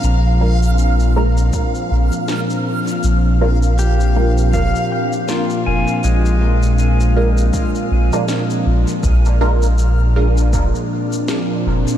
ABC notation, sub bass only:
X:1
M:4/4
L:1/8
Q:"Swing 16ths" 1/4=80
K:Bbmix
V:1 name="Sub bass" clef=bass
B,,,4 z B,,, z2 | B,,,4 F,,, z2 F,,, | B,,,4 z B,,, z B,,, | B,,,4 F,,, z2 F,,, |]